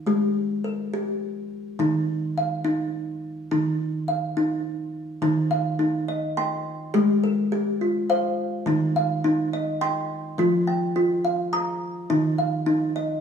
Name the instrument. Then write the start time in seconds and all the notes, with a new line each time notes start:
kalimba
0.06 G#3 G4
0.64 A#4
0.94 G4
1.79 D#3 D#4
2.38 F5
2.65 D#4
3.51 D#3 D#4
4.08 F5
4.37 D#4
5.22 D#3 D#4
5.51 F5
5.79 D#4
6.08 D#5
6.37 G5 C6
6.94 G#3 G4
7.24 A#4
7.52 G4
7.81 F4
8.10 C5 F5
8.66 D#3 D#4
8.96 F5
9.24 D#4
9.53 D#5
9.81 G5 C6
10.38 F3 F4
10.67 G5
10.96 F4
11.25 F5
11.53 A#5 D#6
12.10 D#3 D#4
12.38 F5
12.66 D#4
12.96 D#5